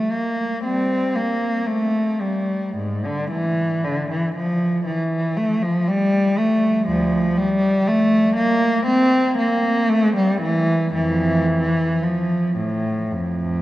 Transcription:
0.00 0.12 A3 medium
0.12 0.65 A#3 medium
0.64 1.13 G3 medium
0.64 1.15 C4 medium
1.15 1.68 A#3 medium
1.67 2.21 A3 medium
2.21 2.77 G3 medium
2.76 3.04 G#2 medium
3.05 3.32 D3 medium
3.31 3.83 E3 medium
3.84 4.10 D3 medium
4.11 4.36 E3 medium
4.36 4.85 F3 medium
4.86 5.35 E3 medium
5.36 5.62 A3 medium
5.62 5.87 F3 medium
5.88 6.38 G3 medium
6.38 6.87 A3 medium
6.87 7.33 D2 medium
6.87 7.35 F3 medium
7.38 7.86 G3 medium
7.87 8.36 A3 loud
8.36 8.86 A#3 medium
8.86 9.36 C4 loud
9.38 9.88 A#3 medium
9.89 10.15 A3 medium
10.16 10.42 G3 medium
10.42 10.93 E3 medium
10.94 11.98 F2 medium
10.94 12.00 E3 medium
12.02 12.57 F3 medium
12.57 13.11 A2 medium
13.12 13.62 F2 medium

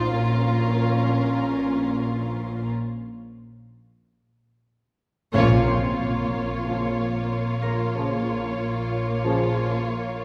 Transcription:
0.00 2.69 F4 medium
0.11 2.69 A#1 medium
0.11 2.69 A#2 medium
0.11 2.69 C#4 medium
0.11 2.70 A#4 medium
5.33 10.25 A#1 medium
5.33 6.28 A#2 medium
5.33 10.25 A#2 medium
5.33 5.64 F3 medium
5.33 10.25 A#3 medium
5.33 5.64 C#4 medium
5.33 10.25 F4 medium
5.33 10.25 C#5 medium
5.33 impact medium
5.67 9.58 C4 soft
5.67 9.57 C6 soft
6.65 6.87 C#3 soft
6.65 6.88 F3 medium
7.62 10.25 A#4 soft
7.96 8.18 C#3 medium
7.96 8.18 F3 medium
9.25 9.48 C#3 medium
9.25 9.48 F3 medium

